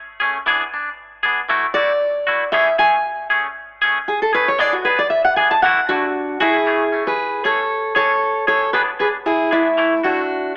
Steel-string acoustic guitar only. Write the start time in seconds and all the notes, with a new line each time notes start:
1.74 D5
2.52 E5
2.79 G#5
4.08 G#4
4.22 A4
4.34 B4
4.48 C#5
4.59 D5
4.73 F#4
4.85 B4
4.99 D5
5.10 E5
5.25 F#5
5.36 G#5
5.51 A5
5.62 F#5
5.89 D4 F#4
6.40 E4 G#4
7.07 G#4 B4
7.45 A4 C#5
7.96 A4 C#5
8.48 A4 C#5
8.73 G#4 B4
9.00 G#4 B4
9.26 E4 G#4
9.52 A3 E4
10.04 D4 F#4